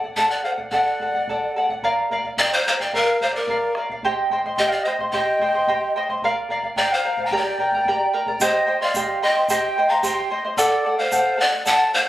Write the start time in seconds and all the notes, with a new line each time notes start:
0.03 D5 F#5, bombo low
0.16 A4 D5 F#5 A5, bombo low
0.29 D5 F#5
0.43 A4 C5 D5 F5 F#5
0.58 D5 F#5, bombo low
0.70 A4 D5 F#5, bombo low
1.00 A4 D5 F#5, bombo low
1.14 D5 F#5, bombo low
1.27 A4 D5 F#5, bombo low
1.56 A4 D5 F#5
1.69 D5 F#5, bombo low
1.83 A#4 D5 F5, bombo low
2.11 A#4 D5 F5, bombo low
2.24 D5 F5, bombo low
2.37 A#4 D5 F5 G5, bombo low
2.53 C5 F5
2.67 A#4 C5 D5 F5
2.80 D5 F5 G5, bombo low
2.93 A#4 D5 F5, bombo low
3.19 A#4 C5 D5 F5, bombo low
3.23 F5
3.31 D5
3.35 A#4 D5 F5
3.47 A#4 D5 F5, bombo low
3.75 A#4 D5 F5, bombo rim
3.90 D5 F5, bombo low
4.03 G4 C5 D#5 G5 C6, bombo low
4.30 C5 D#5 G5 C6, bombo low
4.44 C5 D#5 C6, bombo low
4.55 G4 D#5 G5, bombo low
4.60 C5 D#5 G5 C6
4.68 D5 F5
4.82 C5 D#5 G5
4.87 C5 D#5 C6
4.99 C5 D#5 C6, bombo low
5.10 G4 D#5 G5, bombo low
5.14 C5 D#5 C6
5.39 C5 D#5 G5 C6, bombo low
5.53 C5 D#5 C6, bombo low
5.67 G4 C5 D#5 G5 C6, bombo low
5.96 C5 D#5 G5 C6
6.09 C5 D#5 C6, bombo low
6.22 A#4 D5 F5, bombo low
6.49 A#4 D5 F5, bombo low
6.63 D5 F5, bombo low
6.76 A#4 D5 F5 G5, bombo low
6.92 C5 F5
7.05 A#4 D5 F5
7.17 D5 F5, bombo low
7.25 G5 A#5
7.31 G4 A#4 D5 G5 A#5, bombo low
7.36 D5
7.58 A#4 D5 G5 A#5, bombo low
7.72 D5 A#5, bombo low
7.76 A#4
7.85 G4 A#4 D5 G5 A#5, bombo low
8.13 A#4 D5 G5 A#5
8.26 A#4 D5 A#5, bombo low
8.40 G4 C5 D#5 G5 C6, bombo low, shaker
8.67 C5 D#5 G5 C6
8.81 C5 D5 D#5 F5 C6
8.94 G4 C5 D#5 G5 C6, bombo low, shaker
9.22 C5 D#5 G5 C6
9.36 C5 D#5 C6
9.48 G4 C5 D#5 G5 C6, bombo low, shaker
9.78 C5 D#5 G5 C6
9.89 C5 D#5 F5 A#5 C6
10.03 G4 C5 D#5 G5 C6, bombo low, shaker
10.30 C5 D#5 G5 C6
10.45 C5 D#5 C6
10.57 A4 D5 F#5, bombo low, shaker
10.85 A4 D5 F#5
10.97 C5 D5 F5 F#5
11.12 A4 D5 F#5, bombo low, shaker
11.37 A4 D5 F#5
11.52 D5 F#5
11.66 A4 D5 F#5 A5, bombo low, shaker
11.94 A4 C5 D5 F5 F#5